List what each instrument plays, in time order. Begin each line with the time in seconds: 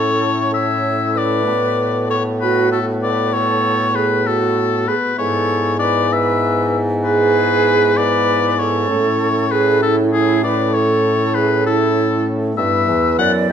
Already playing: pipe organ A2 C#4 E4 A4, bassoon A2, flute A4, oboe C#5
0.54 flute C#5, oboe E5
1.16 flute B4, oboe D5
1.43 bassoon A2, pipe organ B3 F#4 B4
1.47 pipe organ A2
2.09 flute A4, oboe C#5
2.41 flute F#4, oboe B4
2.72 flute F#4, oboe A4
3.03 flute B4, oboe D5
3.33 flute A4, oboe C#5
3.95 flute G#4, oboe B4
4.26 flute F#4, oboe A4
4.88 flute G#4, oboe B4
5.15 bassoon G#2, pipe organ B3 E4 B4, flute A4, oboe C#5
5.20 pipe organ G#2
5.79 flute B4, oboe D5
6.12 flute B4, oboe E5
7.03 flute G#4, oboe B4
7.96 flute B4, oboe D5
8.59 flute A4, oboe C#5
8.85 pipe organ C#4 E4 A4
8.90 bassoon A2, pipe organ A2
9.51 flute G#4, oboe B4
9.82 flute E4, oboe A4
10.13 flute E4, oboe G#4
10.44 flute B4, oboe D5
10.74 flute A4, oboe C#5
11.34 flute G#4, oboe B4
11.66 flute E4, oboe A4
12.53 bassoon G2, pipe organ B3 E4 B4, oboe E5
12.58 pipe organ G2, flute B4
12.88 bassoon E2, pipe organ E2
13.18 bassoon F#2, pipe organ F#2, flute D5, oboe F#5